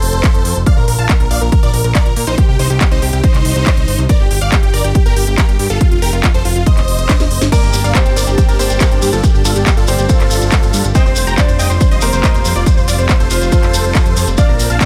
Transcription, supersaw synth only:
0.00 0.58 A4 medium
0.00 0.58 C5 loud
0.66 0.74 D5 medium
0.66 0.74 F5 loud
0.77 0.85 A#4 medium
0.88 0.95 A#4 medium
0.98 1.06 F5 medium
0.98 1.06 A5 medium
1.09 1.17 A#4 medium
1.20 1.28 A#4 medium
1.31 1.38 D5 medium
1.31 1.38 F5 medium
1.41 1.49 A#4 medium
1.52 1.60 A#4 medium
1.63 1.70 A#4 medium
1.63 1.70 D5 loud
1.74 1.81 A#4 medium
1.84 1.92 A#4 medium
1.95 2.03 A#4 medium
1.95 2.03 D5 loud
2.06 2.13 A#4 medium
2.16 2.24 A#4 medium
2.27 2.35 D#4 medium
2.27 2.35 C5 loud
2.38 2.45 G4 medium
2.49 2.56 G4 medium
2.59 2.67 D#4 medium
2.59 2.67 C5 loud
2.70 2.78 G4 medium
2.81 2.88 G4 medium
2.91 2.99 D#4 medium
2.91 2.99 C5 medium
3.02 3.10 G4 medium
3.13 3.20 G4 medium
3.24 4.01 D#4 medium
3.24 4.01 C5 loud
4.09 4.17 A#4 medium
4.09 4.17 D5 loud
4.20 4.28 G4 medium
4.31 4.38 G4 medium
4.41 4.49 D5 medium
4.41 4.49 F5 loud
4.52 4.60 G4 medium
4.63 4.70 G4 medium
4.74 4.81 A#4 medium
4.74 4.81 D5 loud
4.84 4.92 G4 medium
4.95 5.03 G4 medium
5.06 5.13 G4 medium
5.06 5.13 A#4 medium
5.16 5.24 G4 medium
5.27 5.35 G4 medium
5.38 5.45 G4 medium
5.38 5.45 A#4 medium
5.49 5.56 G4 medium
5.59 5.67 G4 medium
5.70 5.78 F4 medium
5.70 5.78 A4 loud
5.81 5.88 F4 medium
5.92 5.99 F4 medium
6.02 6.10 G4 medium
6.02 6.10 A#4 loud
6.13 6.20 F4 medium
6.24 6.31 F4 medium
6.34 6.42 A4 medium
6.34 6.42 C5 medium
6.45 6.53 F4 medium
6.56 6.63 F4 medium
6.66 7.44 C5 medium
6.66 7.44 D#5 loud
7.52 7.60 A#4 medium
7.52 7.60 D5 loud
7.63 7.70 G4 medium
7.74 7.81 G4 medium
7.84 7.92 D5 medium
7.84 7.92 F5 medium
7.95 8.03 G4 medium
8.06 8.13 G4 medium
8.16 8.24 A#4 medium
8.16 8.24 D5 medium
8.27 8.35 G4 medium
8.38 8.45 G4 medium
8.48 8.56 G4 medium
8.48 8.56 A#4 medium
8.59 8.67 G4 medium
8.70 8.78 G4 medium
8.81 8.88 G4 medium
8.81 8.88 A#4 loud
8.91 8.99 G4 medium
9.02 9.10 G4 medium
9.13 9.20 F4 medium
9.13 9.20 A4 loud
9.24 9.31 G4 medium
9.34 9.42 G4 medium
9.45 9.53 F4 medium
9.45 9.53 A4 loud
9.56 9.63 G4 medium
9.66 9.74 G4 medium
9.77 9.85 F4 medium
9.77 9.85 A4 loud
9.88 9.95 G4 medium
9.99 10.06 G4 medium
10.09 10.86 F4 medium
10.09 10.86 A4 loud
10.95 11.03 D#5 medium
10.95 11.03 G5 loud
11.06 11.13 C5 medium
11.16 11.24 C5 medium
11.27 11.35 G5 medium
11.27 11.35 A#5 loud
11.38 11.45 C5 medium
11.48 11.56 C5 medium
11.59 11.67 D#5 medium
11.59 11.67 G5 medium
11.70 11.77 C5 medium
11.81 11.88 C5 medium
11.91 11.99 C5 medium
11.91 11.99 D#5 loud
12.02 12.10 C5 medium
12.13 12.20 C5 medium
12.24 12.31 C5 medium
12.24 12.31 D#5 loud
12.34 12.42 C5 medium
12.45 12.53 C5 medium
12.56 12.63 F4 medium
12.56 12.63 D5 loud
12.67 12.74 C5 medium
12.77 12.85 C5 medium
12.88 12.95 F4 medium
12.88 12.95 D5 medium
12.99 13.06 C5 medium
13.09 13.17 C5 medium
13.20 13.28 A4 medium
13.20 13.28 C5 loud
13.31 13.38 C5 medium
13.41 13.49 C5 medium
13.52 14.29 A4 medium
13.52 14.29 C5 loud
14.38 14.45 D5 medium
14.38 14.45 F5 loud
14.49 14.56 A#4 medium
14.59 14.67 A#4 medium
14.70 14.78 F5 medium
14.70 14.78 A5 loud
14.81 14.85 A#4 medium

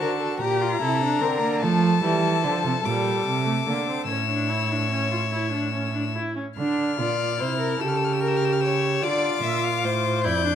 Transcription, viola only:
0.00 0.43 F#4 medium
0.41 0.63 G4 medium
0.61 0.81 F4 medium
0.81 1.01 E4 medium
1.02 1.23 D4 medium
1.22 1.41 C4 medium
1.42 1.64 A#3 medium
1.63 2.01 A3 medium
2.02 2.42 G3 medium
2.42 2.83 F3 medium
2.84 3.45 G3 medium
3.45 3.53 A3 medium
3.65 3.87 A#3 medium
3.87 4.08 C4 medium
4.08 4.29 C#4 medium
4.29 4.51 D4 medium
4.50 4.73 E4 medium
4.72 4.90 D4 medium
4.91 5.11 C#4 medium
5.11 5.19 F4 medium
5.32 5.52 E4 medium
5.52 5.73 D4 medium
5.74 5.94 C#4 medium
5.95 6.03 D4 medium
6.15 6.35 E4 medium
6.36 6.44 C#4 medium
6.57 6.96 D4 medium
6.98 7.38 F4 medium
7.40 7.82 E4 medium
7.80 9.04 G4 medium
9.02 10.26 F4 medium
10.25 10.44 E4 medium
10.45 10.53 D4 medium

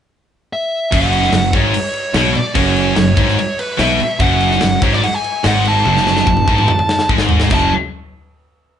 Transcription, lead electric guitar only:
0.53 0.94 E5 medium
0.93 1.56 F#5 medium
1.54 2.32 C#5 loud
2.37 2.55 D5 medium
2.57 2.98 C#5 medium
2.99 3.38 C#5 medium
3.40 3.60 C#5 medium
3.59 3.80 B4 medium
3.80 4.22 E5 medium
4.21 4.85 F#5 loud
4.83 4.93 C#5 medium
4.93 5.04 D5 loud
5.04 5.14 F#5 loud
5.14 5.46 G#5 loud
5.47 5.65 F#5 loud
5.68 7.08 A5 loud
7.54 7.73 A5 medium

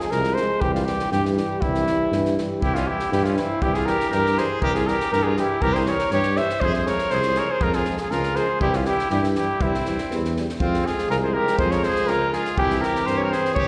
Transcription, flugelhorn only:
0.00 0.13 G#4 medium
0.11 0.37 A#4 medium
0.35 0.62 C5 medium
0.61 0.74 G4 medium
0.75 0.86 F4 medium
0.85 1.11 G4 medium
1.12 1.24 G4 medium
1.37 1.63 G4 medium
1.61 2.37 E4 medium
2.63 2.76 G4 medium
2.75 2.89 F4 medium
2.87 3.12 G4 medium
3.12 3.26 G4 medium
3.24 3.38 F4 medium
3.36 3.64 E4 medium
3.62 3.76 G4 medium
3.74 3.87 G#4 medium
3.86 4.10 A#4 medium
4.10 4.40 A#4 medium
4.38 4.61 C5 medium
4.62 4.74 A#4 medium
4.74 4.89 G#4 medium
4.88 5.11 A#4 medium
5.12 5.25 A#4 medium
5.23 5.36 G#4 medium
5.39 5.63 G4 medium
5.62 5.75 A#4 loud
5.73 5.89 C5 medium
5.87 6.12 C#5 medium
6.13 6.39 C#5 loud
6.37 6.62 E5 medium
6.61 6.74 C5 loud
6.74 6.89 C5 medium
6.87 7.13 C#5 medium
7.11 7.41 C5 loud
7.39 7.53 C#5 medium
7.52 7.65 C5 medium
7.63 7.77 A#4 medium
7.75 7.99 G#4 medium
8.01 8.13 G#4 medium
8.11 8.38 A#4 medium
8.36 8.61 C5 medium
8.62 8.78 G4 medium
8.76 8.88 F4 medium
8.87 9.10 G4 medium
9.11 9.22 G4 medium
9.36 9.64 G4 medium
9.62 10.35 E4 medium
10.59 10.87 F4 medium
10.86 11.09 G#4 medium
11.10 11.16 A#4 medium
11.23 11.35 C5 medium
11.34 11.58 A#4 medium
11.59 11.73 C5 medium
11.71 11.85 C#5 medium
11.84 12.09 C5 medium
12.07 12.32 A#4 loud
12.33 12.56 G#4 medium
12.57 12.83 G4 loud
12.81 13.08 A#4 medium
13.06 13.19 C5 medium
13.17 13.32 C#5 medium
13.30 13.54 C5 medium
13.55 13.68 C#5 loud

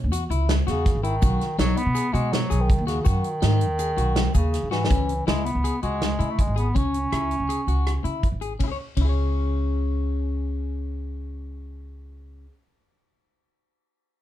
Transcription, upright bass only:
0.04 0.25 E2 medium
0.30 0.59 C#2 medium
0.68 0.89 E2 medium
0.95 1.16 G#1 medium
1.22 1.37 B1 medium
1.58 1.73 B1 medium
1.86 2.01 B2 medium
2.14 2.43 B2 medium
2.51 2.72 B1 medium
2.78 3.00 D#2 medium
3.06 3.20 F#2 medium
3.43 3.70 G#2 medium
3.70 3.92 D#2 medium
3.97 4.26 B1 medium
4.35 4.56 D#2 medium
4.63 4.84 G#2 medium
4.90 5.19 C#2 medium
5.27 5.49 C#2 medium
5.55 5.69 C#2 medium
5.83 6.11 C#2 medium
6.20 6.34 C#3 medium
6.47 6.69 G#1 medium
6.76 7.04 C#2 medium
7.12 7.33 C#2 medium
7.40 7.54 C#2 medium
7.67 7.96 C#2 medium
8.04 8.19 C#3 medium
8.32 8.54 G#1 medium
8.60 8.70 C#2 medium
8.97 12.45 C#2 medium

